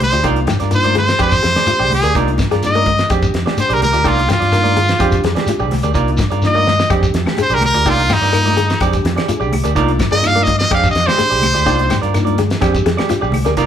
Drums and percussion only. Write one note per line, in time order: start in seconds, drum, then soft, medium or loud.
0.00 closed hi-hat medium
0.00 high conga medium
0.00 low conga medium
0.13 closed hi-hat soft
0.13 shekere medium
0.24 kick medium
0.24 closed hi-hat medium
0.24 high conga medium
0.24 shekere medium
0.36 closed hi-hat soft
0.47 snare medium
0.47 closed hi-hat soft
0.47 high conga medium
0.47 shekere medium
0.60 snare soft
0.60 closed hi-hat soft
0.60 shekere soft
0.71 closed hi-hat medium
0.71 shekere medium
0.84 closed hi-hat soft
0.84 high conga medium
0.95 snare soft
0.95 closed hi-hat medium
0.95 high conga medium
0.95 low conga medium
0.95 shekere soft
1.08 snare medium
1.08 closed hi-hat soft
1.08 shekere medium
1.19 kick medium
1.19 snare soft
1.19 closed hi-hat medium
1.19 shekere medium
1.31 kick medium
1.31 closed hi-hat soft
1.31 shekere medium
1.43 snare medium
1.43 closed hi-hat medium
1.55 snare medium
1.55 closed hi-hat soft
1.55 high conga medium
1.55 low conga medium
1.55 shekere soft
1.66 closed hi-hat medium
1.66 high conga medium
1.66 shekere medium
1.80 shekere soft
1.91 open hi-hat medium
1.91 high conga medium
1.91 low conga medium
2.03 closed hi-hat soft
2.03 shekere medium
2.14 kick medium
2.14 snare soft
2.14 closed hi-hat medium
2.14 high conga medium
2.14 shekere medium
2.28 closed hi-hat soft
2.38 kick medium
2.38 snare medium
2.38 closed hi-hat soft
2.38 high conga medium
2.38 shekere loud
2.52 snare soft
2.52 closed hi-hat soft
2.52 shekere soft
2.63 snare soft
2.63 closed hi-hat medium
2.63 shekere medium
2.74 closed hi-hat soft
2.74 high conga medium
2.86 kick medium
2.86 closed hi-hat soft
2.86 high conga medium
2.86 low conga medium
2.86 shekere soft
2.98 snare medium
2.98 closed hi-hat soft
2.98 shekere medium
3.10 kick medium
3.10 closed hi-hat medium
3.10 shekere medium
3.22 kick medium
3.22 closed hi-hat soft
3.22 shekere medium
3.34 snare medium
3.34 closed hi-hat medium
3.46 snare medium
3.46 high conga medium
3.46 shekere soft
3.57 closed hi-hat medium
3.57 high conga loud
3.57 shekere medium
3.70 closed hi-hat soft
3.70 shekere soft
3.82 snare soft
3.82 closed hi-hat medium
3.82 high conga medium
3.82 low conga medium
3.93 closed hi-hat soft
3.93 shekere medium
4.04 kick medium
4.04 closed hi-hat medium
4.04 high conga medium
4.04 shekere medium
4.19 closed hi-hat soft
4.29 snare medium
4.29 closed hi-hat medium
4.29 high conga medium
4.29 shekere loud
4.41 snare soft
4.41 closed hi-hat soft
4.41 shekere soft
4.52 snare soft
4.52 closed hi-hat medium
4.52 shekere medium
4.65 closed hi-hat soft
4.65 high conga medium
4.76 closed hi-hat medium
4.76 low conga medium
4.76 shekere soft
4.88 snare medium
4.88 closed hi-hat soft
4.88 shekere medium
4.99 kick medium
4.99 closed hi-hat medium
4.99 shekere medium
5.12 kick medium
5.12 closed hi-hat soft
5.12 shekere medium
5.24 snare medium
5.24 closed hi-hat medium
5.36 snare medium
5.36 closed hi-hat soft
5.36 high conga medium
5.36 low conga medium
5.36 shekere soft
5.46 snare soft
5.46 closed hi-hat medium
5.46 high conga medium
5.46 shekere medium
5.59 shekere soft
5.71 snare soft
5.71 open hi-hat medium
5.71 high conga medium
5.71 low conga medium
5.83 closed hi-hat soft
5.83 shekere medium
5.94 kick medium
5.94 closed hi-hat medium
5.94 shekere medium
6.08 closed hi-hat soft
6.17 kick medium
6.17 snare medium
6.17 closed hi-hat soft
6.17 high conga medium
6.17 shekere medium
6.31 closed hi-hat soft
6.31 shekere soft
6.42 snare medium
6.42 shekere medium
6.55 high conga medium
6.66 snare medium
6.66 high conga medium
6.66 low conga medium
6.66 shekere soft
6.79 snare medium
6.79 shekere medium
6.90 kick medium
6.90 closed hi-hat medium
6.90 claves medium
6.90 shekere medium
7.03 kick medium
7.03 closed hi-hat soft
7.03 shekere medium
7.14 snare medium
7.14 closed hi-hat medium
7.26 snare medium
7.26 high conga medium
7.26 low conga medium
7.26 claves medium
7.26 shekere soft
7.37 closed hi-hat medium
7.37 high conga medium
7.37 shekere medium
7.50 closed hi-hat soft
7.50 shekere soft
7.61 snare soft
7.61 closed hi-hat medium
7.61 high conga medium
7.61 low conga medium
7.61 claves medium
7.75 closed hi-hat soft
7.75 shekere medium
7.85 kick medium
7.85 closed hi-hat medium
7.85 high conga medium
7.85 shekere medium
7.98 closed hi-hat soft
8.10 snare medium
8.10 closed hi-hat medium
8.10 high conga loud
8.10 claves medium
8.10 shekere medium
8.22 snare soft
8.22 closed hi-hat soft
8.22 shekere soft
8.34 closed hi-hat medium
8.34 claves medium
8.34 shekere medium
8.46 closed hi-hat soft
8.46 high conga medium
8.57 closed hi-hat medium
8.57 low conga medium
8.57 shekere soft
8.70 snare medium
8.70 closed hi-hat soft
8.70 shekere medium
8.80 kick medium
8.80 snare soft
8.80 closed hi-hat medium
8.80 claves medium
8.80 shekere medium
8.93 kick medium
8.93 closed hi-hat soft
8.93 shekere medium
9.05 snare medium
9.05 closed hi-hat medium
9.17 snare medium
9.17 closed hi-hat soft
9.17 low conga medium
9.17 claves medium
9.17 shekere soft
9.29 closed hi-hat medium
9.29 high conga medium
9.29 shekere medium
9.41 shekere soft
9.52 open hi-hat medium
9.52 high conga medium
9.52 low conga medium
9.52 claves medium
9.65 closed hi-hat soft
9.65 shekere medium
9.76 kick medium
9.76 closed hi-hat medium
9.76 high conga medium
9.76 shekere medium
9.88 closed hi-hat soft
9.99 kick medium
9.99 snare medium
9.99 closed hi-hat medium
9.99 high conga medium
9.99 claves medium
9.99 shekere medium
10.12 snare soft
10.12 closed hi-hat soft
10.23 snare soft
10.23 closed hi-hat medium
10.23 claves medium
10.23 shekere medium
10.36 closed hi-hat soft
10.36 high conga medium
10.47 kick medium
10.47 snare soft
10.47 closed hi-hat medium
10.47 high conga medium
10.47 low conga medium
10.47 shekere soft
10.60 snare medium
10.60 closed hi-hat soft
10.60 shekere medium
10.71 kick medium
10.71 closed hi-hat medium
10.71 claves medium
10.71 shekere medium
10.84 kick medium
10.84 closed hi-hat soft
10.84 shekere medium
10.95 snare medium
10.95 closed hi-hat medium
11.08 snare medium
11.08 high conga medium
11.08 low conga medium
11.08 claves medium
11.19 closed hi-hat medium
11.19 high conga medium
11.19 shekere medium
11.31 closed hi-hat soft
11.31 shekere soft
11.42 snare soft
11.42 closed hi-hat medium
11.42 high conga medium
11.42 low conga medium
11.42 claves medium
11.55 closed hi-hat soft
11.55 shekere medium
11.66 kick medium
11.66 closed hi-hat medium
11.66 high conga medium
11.66 shekere medium
11.79 closed hi-hat soft
11.90 snare medium
11.90 closed hi-hat medium
11.90 high conga loud
11.90 claves medium
11.90 shekere loud
12.03 closed hi-hat soft
12.03 shekere soft
12.14 snare soft
12.14 closed hi-hat medium
12.14 claves medium
12.14 shekere medium
12.26 closed hi-hat soft
12.26 high conga medium
12.38 snare soft
12.38 closed hi-hat medium
12.38 high conga medium
12.38 low conga medium
12.38 shekere soft
12.50 snare medium
12.50 closed hi-hat soft
12.50 shekere medium
12.61 kick medium
12.61 snare soft
12.61 closed hi-hat medium
12.61 claves medium
12.61 shekere medium
12.75 kick medium
12.75 closed hi-hat soft
12.75 shekere medium
12.86 snare medium
12.86 closed hi-hat medium
12.98 snare medium
12.98 closed hi-hat soft
12.98 high conga medium
12.98 claves medium
12.98 shekere soft
13.09 snare soft
13.09 closed hi-hat medium
13.09 high conga loud
13.09 shekere medium
13.23 shekere soft
13.32 open hi-hat medium
13.32 high conga medium
13.32 low conga medium
13.32 claves medium
13.46 snare soft
13.46 closed hi-hat soft
13.46 shekere medium
13.57 kick medium
13.57 snare soft
13.57 closed hi-hat medium
13.57 shekere medium